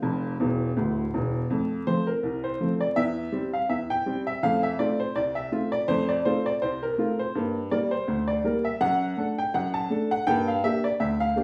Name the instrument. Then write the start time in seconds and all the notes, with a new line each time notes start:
upright piano
Already playing: F4 C5 F5
0.02 F1 F2
0.40 E1 E2
0.77 D1 D2
1.14 E1 E2
1.50 F2 A3
1.87 F3 A3 C4 C5
2.07 A#4
2.23 C2
2.44 C5
2.61 F3 A3 C4
2.81 D5
2.96 E2 E5
3.32 G3 C4
3.53 F5
3.69 E2 E5
3.90 G5
4.06 G3 C4
4.27 E5
4.43 F2 A3 F5
4.63 E5
4.79 A3 C4 F4 D5
5.00 C5
5.16 C2 D5
5.35 E5
5.52 A3 C4 F4
5.72 D5
5.88 F2 A3 C5
6.09 D5
6.25 A3 C4 F4 C5
6.46 D5
6.62 C2 C5
6.83 A#4
6.98 A3 C4 F4
7.19 C5
7.35 G2 A#3
7.71 G3 A#3 A#4 D5
7.91 C5
8.08 D2
8.28 D5
8.44 G3 A#3 A#4
8.65 E5
8.81 F#2 F#5
9.17 A3 D4 A4
9.38 G5
9.54 F#2 F#5
9.74 A5
9.90 A3 D4 A4
10.11 F#5
10.27 G2 A#3 G5
10.48 F5
10.64 A#3 D4 G4 E5
10.84 D5
11.00 D2 E5
11.20 F5
11.36 A#3 D4 G4